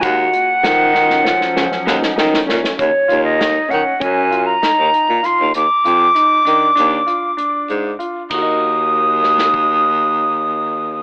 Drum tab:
RD |------------------|------------------|------------------|x-----------------|
HH |x-x-x-------------|x-x-x-x-x-x-x-x-x-|x-x-x-x-x-x-x-x-x-|------------------|
SD |----o-oooooooooooo|----o-------o---o-|------------------|------oo----------|
BD |o-----------------|o-------o---------|------------------|o-------o---------|